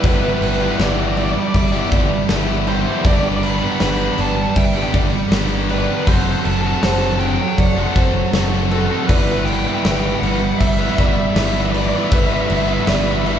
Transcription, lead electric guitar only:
0.00 B4
0.07 B4
0.17 B4
0.24 B4
0.33 B4
0.40 B4
0.48 B4
0.55 B4
0.64 B4
0.72 B4
0.77 D5
0.84 D5
0.93 D5
1.00 D5
1.08 D5
1.17 D5
1.24 D5
1.32 D5
1.40 D5
1.48 D5
1.56 D5
1.64 D5
1.71 D5
1.80 D5
2.68 C5
2.75 C5
2.81 C5
2.89 C5
2.96 C5
3.05 D5
3.13 D5
3.20 D5
3.29 D5
3.37 D5
3.43 B5
3.51 B5
3.59 B5
3.67 B5
3.74 B5
3.82 B5
3.90 B5
3.98 B5
4.05 B5
4.13 B5
4.21 A5
4.28 A5
4.36 A5
4.43 A5
4.50 A5
4.58 G5
4.65 G5
4.76 G5
4.83 G5
5.71 B4
5.78 B4
5.86 B4
5.94 B4
6.01 B4
6.08 C5
6.16 C5
6.24 C5
6.31 C5
6.40 C5
6.45 A5
6.52 A5
6.61 A5
6.68 A5
6.76 A5
6.83 A5
6.91 A5
6.99 A5
7.06 A5
7.15 A5
7.20 G5
7.27 G5
7.34 G5
7.41 G5
7.49 G5
7.59 F#5
7.67 F#5
7.73 F#5
7.80 F#5
7.87 F#5
8.72 A4
8.78 A4
8.87 A4
8.95 A4
9.02 A4
9.07 B4
9.15 B4
9.23 B4
9.32 B4
9.39 B4
9.45 G5
9.53 G5
9.60 G5
9.67 G5
9.74 G5
9.83 G5
9.91 G5
10.00 G5
10.06 G5
10.15 G5
10.20 F#5
10.28 F#5
10.36 F#5
10.44 F#5
10.52 F#5
10.58 E5
10.67 E5
10.74 E5
10.81 E5
10.90 E5
10.99 E5
11.06 E5
11.13 E5
11.21 E5
11.30 E5
11.38 E5
11.45 E5
11.54 E5
11.61 E5
11.70 D5 E5
11.81 D5
11.89 D5
11.96 D5
12.04 D5
12.11 E5
12.19 E5
12.27 E5
12.34 E5
12.41 E5
12.49 E5
12.57 E5
12.66 E5
12.74 E5
12.80 E5
12.89 E5
12.95 E5
13.05 E5
13.11 E5
13.19 E5
13.28 E5

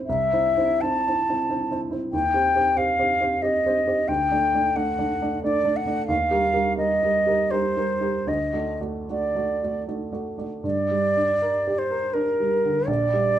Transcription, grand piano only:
0.09 C2
0.33 C4 E4 C5
0.57 C4 E4 C5
0.83 C4 E4 C5
1.08 C4 E4 C5
1.29 C4 E4 C5
1.50 C4 E4 C5
1.71 C4 E4 C5
1.91 C4 E4 C5
2.13 D#2
2.33 C4 G4 C5
2.55 C4 G4 C5
2.76 C4 G4 C5
2.99 C4 G4 C5
3.20 C4 G4 C5
3.43 C4 G4 C5
3.66 C4 G4 C5
3.87 C4 G4 C5
4.08 D2
4.31 A3 D4 D5
4.54 A3 D4 D5
4.76 A3 D4 D5
4.99 A3 D4 D5
5.22 A3 D4 D5
5.43 A3 D4 D5
5.64 A3 D4 D5
5.86 A3 D4 D5
6.08 D#2
6.31 G3 G4 A#4
6.53 G3 G4 A#4
6.77 G3 G4 A#4
7.03 G3 G4 A#4
7.26 G3 G4 A#4
7.51 G3 G4 A#4
7.76 G3 G4 A#4
8.01 G3 G4 A#4
8.27 D2
8.53 A3 F#4 D5
8.81 A3 F#4 D5
9.09 A3 F#4 D5
9.36 A3 F#4 D5
9.63 A3 F#4 D5
9.88 A3 F#4 D5
10.12 A3 F#4 D5
10.38 A3 F#4 D5
10.64 G2
10.91 G3
11.17 D4
11.42 A#4
11.67 G4
11.91 A#4
12.15 D4
12.40 G3
12.65 D3
12.87 A#1
13.13 G3

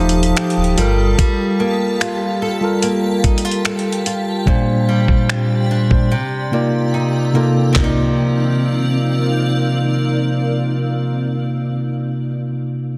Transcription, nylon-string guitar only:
Already playing: F3 A3 D#4 G4
0.37 G4
0.78 G3
1.19 G3
1.60 A#3
2.01 F4
2.42 A4
2.83 A#3
3.24 D#4
3.45 F4
3.65 A4
4.06 F4
4.48 A#2
4.89 G3
5.30 C4
5.71 D4
6.12 C3
6.53 A#3
6.94 D#4
7.35 A#3
7.73 C3
7.77 F3 A#3
7.84 D#4

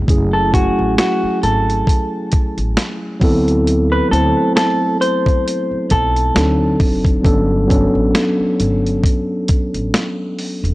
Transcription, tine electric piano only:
0.06 F#3 A3 C#4 E4 G#4
0.50 F#3 A3 C#4 E4 G#5
3.20 F#3 B3 C4 E4 A4
4.09 F#3 A3 C4 E4 C5
6.34 F#3 C4 D4 D#4 A4
7.22 F#3 B3 C#4 D4
7.26 A4
7.67 F#3 B3 C#4 D4
7.71 A4

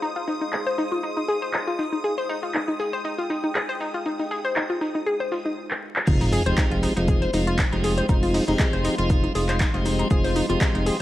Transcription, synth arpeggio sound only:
0.02 D#4
0.16 F4
0.28 D#4
0.41 D#4
0.53 G#4
0.67 C5
0.78 D#4
0.92 F4
1.03 D#4
1.17 D#4
1.28 G#4
1.42 C5
1.54 D#4
1.67 F4
1.79 D#4
1.93 D#4
2.04 G#4
2.18 C5
2.29 D#4
2.43 F4
2.54 D#4
2.68 D#4
2.80 G#4
2.93 C5
3.05 D#4
3.19 F4
3.30 D#4
3.44 D#4
3.55 G#4
3.69 C5
3.80 D#4
3.94 F4
4.06 D#4
4.19 D#4
4.31 G#4
4.45 C5
4.56 D#4
4.70 F4
4.81 D#4
4.95 D#4
5.06 G#4
5.20 C5
5.32 F4
5.45 D#4
6.07 D#4
6.21 D#4
6.32 G#4
6.46 C5
6.58 D#4
6.71 F4
6.83 D#4
6.97 D#4
7.08 G#4
7.22 C5
7.33 D#4
7.47 F4
7.59 D#4
7.72 D#4
7.84 G#4
7.98 C5
8.09 D#4
8.23 F4
8.34 D#4
8.48 D#4
8.60 G#4
8.73 C5
8.85 D#4
8.98 F4
9.10 D#4
9.24 D#4
9.35 G#4
9.49 C5
9.60 D#4
9.74 F4
9.85 D#4
9.99 D#4
10.11 G#4
10.24 C5
10.36 D#4
10.50 F4
10.61 D#4
10.75 D#4
10.86 G#4

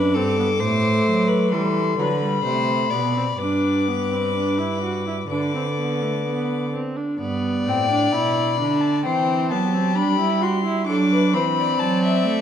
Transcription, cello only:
Already playing: F#2
0.15 G2
0.60 A2
1.06 F#3
1.52 E3
1.98 D3
2.44 C3
2.91 B2
3.39 G2
5.30 D3
7.19 G2
7.66 A2
8.13 B2
8.59 D3
9.05 E3
9.51 F#3
9.97 G3
10.89 F#3
11.34 E3
11.80 F#3
12.26 A3

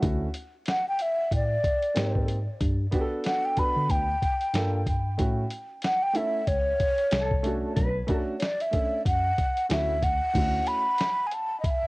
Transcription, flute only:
0.69 F#5
0.89 G5
1.02 E5
1.36 D5
3.26 F#5
3.45 G5
3.59 B5
3.91 G5
5.85 F#5
6.03 G5
6.16 E5
6.48 C#5
8.39 C#5 D5
8.62 E5
9.07 F#5
9.71 E5
10.04 F#5
10.68 B5
11.27 G#5
11.33 A5
11.60 D#5
11.66 E5

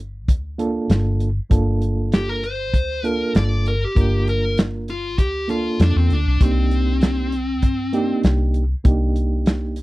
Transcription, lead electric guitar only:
2.14 G4
2.29 A#4
2.44 C5
3.07 A#4
3.36 D5
3.68 A#4
3.84 G4
4.29 A#4
4.90 F4
5.19 G4
5.50 F4
5.82 D4
5.98 C4
6.13 D4
6.43 C4

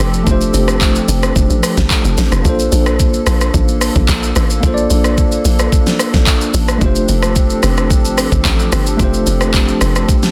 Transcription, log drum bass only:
0.00 F1
0.27 F1
0.54 F1
1.08 F1
1.36 F1
1.50 A1
1.78 G1
2.05 F1
2.18 A1
2.32 F1
2.45 A#1
2.72 A#1
3.27 A#1
3.54 A1
3.96 A1
4.09 A#1
4.36 A1
4.63 A#1
4.90 A#1
5.45 A#1
6.54 A1
6.81 F1
7.09 F1
7.63 F1
7.90 G1
8.32 G1
8.45 A1
8.72 G1
9.00 F1
9.27 F1
9.81 F1

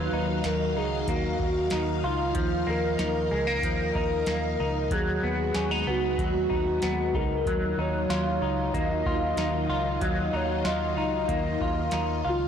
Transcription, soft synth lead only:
Already playing: B4
0.46 A#4
0.77 G#4
1.09 F#4
2.06 F4
2.37 F4
2.69 A#4
3.65 A#4
4.93 G#4
5.89 F#4
7.16 A#4
7.79 C#5
8.74 D#5
10.03 D#5
10.35 C#5
10.67 D#5
12.29 F4

